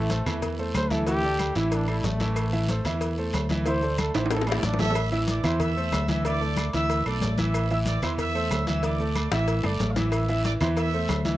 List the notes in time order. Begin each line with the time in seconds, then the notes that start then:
Already playing: A1 A3
0.10 A3 A4 C5, cowbell, high conga, low timbale, short guiro, maracas
0.26 E2 E3 E4 E5, cowbell, high conga, low conga, low agogo, short guiro, claves, maracas
0.42 cowbell, high conga, low conga, low agogo, long guiro, maracas
0.58 A3 A4 C5, high conga, maracas
0.74 D2 C5, cowbell, high conga, low timbale, low agogo, short guiro, claves, maracas
0.90 E3 E4 A4 E5, cowbell, high conga, short guiro, maracas
1.07 E3 E4 G4 E5, cowbell, high conga, low agogo, long guiro, maracas
1.23 A3 A4 D5, high conga, maracas
1.39 cowbell, high conga, low timbale, low agogo, short guiro, claves, maracas
1.55 A1 E3 E4 E5, cowbell, high conga, low agogo, short guiro, maracas
1.72 D4, cowbell, high conga, low agogo, long guiro, maracas
1.88 A3 E4 A4 D5, high conga, low agogo, claves, maracas
2.04 A1 A3, cowbell, high conga, low timbale, short guiro, maracas
2.20 E3 E4 E5, cowbell, high conga, low agogo, short guiro, maracas
2.36 cowbell, high conga, low agogo, long guiro, claves, maracas
2.53 E3 E4 E5, high conga, low agogo, maracas
2.68 A3 A4 C5, cowbell, high conga, low timbale, short guiro, maracas
2.85 E2 E3 E4 E5, cowbell, high conga, low conga, low agogo, short guiro, claves, maracas
3.01 cowbell, high conga, low agogo, long guiro, maracas
3.17 A3 A4 C5, high conga, maracas
3.33 D2, cowbell, high conga, low timbale, low agogo, short guiro, claves, maracas
3.49 E3 E4 E5, cowbell, high conga, short guiro, maracas
3.66 E3 E4 C5 E5, cowbell, low agogo, long guiro, maracas
3.82 A3 A4 D5, high conga, maracas
3.98 A4, cowbell, high conga, low timbale, low agogo, short guiro, claves, maracas
4.14 A1 E3 E4 C5 E5, cowbell, high conga, high timbale, low agogo, short guiro, maracas
4.26 high timbale
4.30 A4, cowbell, high bongo, low agogo, long guiro, maracas
4.36 high timbale
4.41 high bongo
4.47 A3 E4 A4 D5 D6, high conga, low timbale, low agogo, claves, maracas
4.52 high bongo
4.58 low timbale
4.63 A1 D4, cowbell, low bongo, high conga, short guiro, maracas
4.73 low bongo
4.79 E3 E4 A4 E5 E6, cowbell, high conga, low timbale, low agogo, short guiro, maracas
4.85 low bongo
4.90 low timbale
4.95 cowbell, high conga, low agogo, long guiro, claves, maracas
5.12 E3 E4 E5 E6, low agogo, maracas
5.28 D5 D6, cowbell, high conga, low timbale, short guiro, maracas
5.44 E2 E3 E4 C5 E5 C6, cowbell, high conga, low conga, low agogo, short guiro, claves, maracas
5.60 E5 E6, cowbell, high conga, low conga, low agogo, long guiro, maracas
5.76 A3 A4 C5, high conga, maracas
5.92 D2, cowbell, high conga, low timbale, low agogo, short guiro, claves, maracas
6.08 E3 E4 E5 E6, cowbell, high conga, short guiro, maracas
6.25 E3 E4 D5 E5 D6, cowbell, low agogo, long guiro, maracas
6.41 A3 A4 D5, high conga, maracas
6.57 cowbell, high conga, low timbale, low agogo, short guiro, claves, maracas
6.73 D2 E3 E4 E5 E6, cowbell, high conga, low agogo, short guiro, maracas
6.89 cowbell, high conga, low agogo, long guiro, maracas
7.05 B1 A3 A4 D5 D6, high conga, low agogo, claves, maracas
7.21 A1, cowbell, high conga, low timbale, short guiro, maracas
7.37 E3 E4 E5 E6, cowbell, high conga, low agogo, short guiro, maracas
7.54 cowbell, high conga, low agogo, long guiro, claves, maracas
7.70 E3 E4 E5 E6, high conga, low agogo, maracas
7.86 D5 D6, cowbell, high conga, low timbale, short guiro, maracas
8.02 E2 E3 E4 C5 E5 C6, cowbell, high conga, low conga, low agogo, short guiro, claves, maracas
8.18 E5 E6, cowbell, high conga, low conga, low agogo, long guiro, maracas
8.35 A3 A4 C5, high conga, maracas
8.51 D2, cowbell, high conga, low timbale, low agogo, short guiro, claves, maracas
8.67 E3 E4 E5 E6, cowbell, high conga, short guiro, maracas
8.83 E3 E4 D5 E5 D6, cowbell, low agogo, long guiro, maracas
8.99 A3 A4 D5, high conga, maracas
9.15 cowbell, high conga, low timbale, low agogo, short guiro, claves, maracas
9.31 A1 E3 E4 E5 E6, cowbell, high bongo, high conga, low agogo, short guiro, maracas
9.48 cowbell, high conga, low agogo, long guiro, maracas
9.63 G1 A3 A4 D5 D6, low bongo, high conga, low agogo, claves, maracas
9.80 A1, cowbell, high conga, low timbale, short guiro, maracas
9.91 F5
9.96 E3 E4 E5 E6, cowbell, low bongo, high conga, low agogo, short guiro, maracas
10.12 cowbell, low agogo, long guiro, claves, maracas
10.29 E3 E4 E5 E6, high conga, low agogo, maracas
10.44 D5 D6, cowbell, high conga, low timbale, short guiro, maracas
10.61 E2 E3 E4 C5 E5 C6, cowbell, high conga, low conga, low agogo, short guiro, claves, maracas
10.76 E5 E6, cowbell, high conga, low agogo, long guiro, maracas
10.93 A3 A4 C5, high conga, maracas
11.08 D2, cowbell, high conga, low timbale, low agogo, short guiro, claves, maracas
11.25 E3 E4 E5, cowbell, high conga, short guiro, maracas